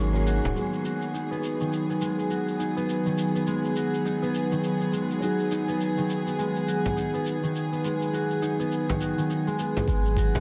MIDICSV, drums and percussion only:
0, 0, Header, 1, 3, 480
1, 0, Start_track
1, 0, Key_signature, 5, "minor"
1, 0, Tempo, 582524
1, 462, Time_signature, 4, 2, 24, 8
1, 8570, End_track
2, 0, Start_track
2, 0, Title_t, "Frame drum"
2, 371, Note_on_c, 9, 64, 77
2, 454, Note_off_c, 9, 64, 0
2, 5650, Note_on_c, 9, 64, 74
2, 5732, Note_off_c, 9, 64, 0
2, 7329, Note_on_c, 9, 64, 83
2, 7412, Note_off_c, 9, 64, 0
2, 8048, Note_on_c, 9, 64, 80
2, 8130, Note_off_c, 9, 64, 0
2, 8529, Note_on_c, 9, 64, 93
2, 8570, Note_off_c, 9, 64, 0
2, 8570, End_track
3, 0, Start_track
3, 0, Title_t, "Drums"
3, 123, Note_on_c, 9, 69, 22
3, 205, Note_off_c, 9, 69, 0
3, 220, Note_on_c, 9, 69, 78
3, 302, Note_off_c, 9, 69, 0
3, 365, Note_on_c, 9, 69, 34
3, 447, Note_off_c, 9, 69, 0
3, 463, Note_on_c, 9, 69, 38
3, 545, Note_off_c, 9, 69, 0
3, 602, Note_on_c, 9, 69, 21
3, 684, Note_off_c, 9, 69, 0
3, 700, Note_on_c, 9, 69, 61
3, 782, Note_off_c, 9, 69, 0
3, 838, Note_on_c, 9, 69, 28
3, 921, Note_off_c, 9, 69, 0
3, 942, Note_on_c, 9, 69, 37
3, 1025, Note_off_c, 9, 69, 0
3, 1086, Note_on_c, 9, 69, 19
3, 1168, Note_off_c, 9, 69, 0
3, 1184, Note_on_c, 9, 69, 63
3, 1266, Note_off_c, 9, 69, 0
3, 1323, Note_on_c, 9, 69, 29
3, 1406, Note_off_c, 9, 69, 0
3, 1424, Note_on_c, 9, 69, 38
3, 1507, Note_off_c, 9, 69, 0
3, 1566, Note_on_c, 9, 69, 19
3, 1649, Note_off_c, 9, 69, 0
3, 1660, Note_on_c, 9, 69, 72
3, 1742, Note_off_c, 9, 69, 0
3, 1803, Note_on_c, 9, 69, 26
3, 1885, Note_off_c, 9, 69, 0
3, 1902, Note_on_c, 9, 69, 39
3, 1984, Note_off_c, 9, 69, 0
3, 2042, Note_on_c, 9, 69, 20
3, 2125, Note_off_c, 9, 69, 0
3, 2141, Note_on_c, 9, 69, 63
3, 2223, Note_off_c, 9, 69, 0
3, 2284, Note_on_c, 9, 69, 28
3, 2366, Note_off_c, 9, 69, 0
3, 2382, Note_on_c, 9, 69, 41
3, 2464, Note_off_c, 9, 69, 0
3, 2522, Note_on_c, 9, 69, 21
3, 2605, Note_off_c, 9, 69, 0
3, 2620, Note_on_c, 9, 69, 67
3, 2703, Note_off_c, 9, 69, 0
3, 2763, Note_on_c, 9, 69, 28
3, 2845, Note_off_c, 9, 69, 0
3, 2858, Note_on_c, 9, 69, 38
3, 2941, Note_off_c, 9, 69, 0
3, 3004, Note_on_c, 9, 69, 20
3, 3086, Note_off_c, 9, 69, 0
3, 3099, Note_on_c, 9, 69, 66
3, 3182, Note_off_c, 9, 69, 0
3, 3245, Note_on_c, 9, 69, 28
3, 3327, Note_off_c, 9, 69, 0
3, 3343, Note_on_c, 9, 69, 38
3, 3426, Note_off_c, 9, 69, 0
3, 3484, Note_on_c, 9, 69, 20
3, 3566, Note_off_c, 9, 69, 0
3, 3581, Note_on_c, 9, 69, 67
3, 3664, Note_off_c, 9, 69, 0
3, 3724, Note_on_c, 9, 69, 30
3, 3806, Note_off_c, 9, 69, 0
3, 3819, Note_on_c, 9, 69, 43
3, 3902, Note_off_c, 9, 69, 0
3, 3962, Note_on_c, 9, 69, 21
3, 4045, Note_off_c, 9, 69, 0
3, 4066, Note_on_c, 9, 69, 74
3, 4148, Note_off_c, 9, 69, 0
3, 4205, Note_on_c, 9, 69, 32
3, 4287, Note_off_c, 9, 69, 0
3, 4303, Note_on_c, 9, 69, 43
3, 4385, Note_off_c, 9, 69, 0
3, 4445, Note_on_c, 9, 69, 21
3, 4528, Note_off_c, 9, 69, 0
3, 4542, Note_on_c, 9, 69, 70
3, 4624, Note_off_c, 9, 69, 0
3, 4685, Note_on_c, 9, 69, 31
3, 4767, Note_off_c, 9, 69, 0
3, 4784, Note_on_c, 9, 69, 40
3, 4867, Note_off_c, 9, 69, 0
3, 4925, Note_on_c, 9, 69, 21
3, 5007, Note_off_c, 9, 69, 0
3, 5023, Note_on_c, 9, 69, 70
3, 5106, Note_off_c, 9, 69, 0
3, 5167, Note_on_c, 9, 69, 31
3, 5250, Note_off_c, 9, 69, 0
3, 5265, Note_on_c, 9, 69, 41
3, 5348, Note_off_c, 9, 69, 0
3, 5407, Note_on_c, 9, 69, 22
3, 5489, Note_off_c, 9, 69, 0
3, 5505, Note_on_c, 9, 69, 74
3, 5587, Note_off_c, 9, 69, 0
3, 5648, Note_on_c, 9, 69, 31
3, 5730, Note_off_c, 9, 69, 0
3, 5745, Note_on_c, 9, 69, 43
3, 5828, Note_off_c, 9, 69, 0
3, 5885, Note_on_c, 9, 69, 22
3, 5968, Note_off_c, 9, 69, 0
3, 5983, Note_on_c, 9, 69, 74
3, 6065, Note_off_c, 9, 69, 0
3, 6128, Note_on_c, 9, 69, 31
3, 6210, Note_off_c, 9, 69, 0
3, 6226, Note_on_c, 9, 69, 42
3, 6308, Note_off_c, 9, 69, 0
3, 6368, Note_on_c, 9, 69, 22
3, 6451, Note_off_c, 9, 69, 0
3, 6466, Note_on_c, 9, 69, 72
3, 6548, Note_off_c, 9, 69, 0
3, 6606, Note_on_c, 9, 69, 32
3, 6689, Note_off_c, 9, 69, 0
3, 6704, Note_on_c, 9, 69, 39
3, 6786, Note_off_c, 9, 69, 0
3, 6844, Note_on_c, 9, 69, 21
3, 6926, Note_off_c, 9, 69, 0
3, 6941, Note_on_c, 9, 69, 68
3, 7023, Note_off_c, 9, 69, 0
3, 7087, Note_on_c, 9, 69, 29
3, 7169, Note_off_c, 9, 69, 0
3, 7185, Note_on_c, 9, 69, 38
3, 7267, Note_off_c, 9, 69, 0
3, 7328, Note_on_c, 9, 69, 20
3, 7410, Note_off_c, 9, 69, 0
3, 7424, Note_on_c, 9, 69, 77
3, 7506, Note_off_c, 9, 69, 0
3, 7566, Note_on_c, 9, 69, 31
3, 7648, Note_off_c, 9, 69, 0
3, 7665, Note_on_c, 9, 69, 42
3, 7747, Note_off_c, 9, 69, 0
3, 7806, Note_on_c, 9, 69, 22
3, 7889, Note_off_c, 9, 69, 0
3, 7902, Note_on_c, 9, 69, 79
3, 7984, Note_off_c, 9, 69, 0
3, 8048, Note_on_c, 9, 69, 30
3, 8130, Note_off_c, 9, 69, 0
3, 8138, Note_on_c, 9, 36, 127
3, 8144, Note_on_c, 9, 69, 45
3, 8221, Note_off_c, 9, 36, 0
3, 8227, Note_off_c, 9, 69, 0
3, 8285, Note_on_c, 9, 69, 23
3, 8368, Note_off_c, 9, 69, 0
3, 8377, Note_on_c, 9, 36, 109
3, 8385, Note_on_c, 9, 69, 81
3, 8460, Note_off_c, 9, 36, 0
3, 8468, Note_off_c, 9, 69, 0
3, 8527, Note_on_c, 9, 69, 33
3, 8570, Note_off_c, 9, 69, 0
3, 8570, End_track
0, 0, End_of_file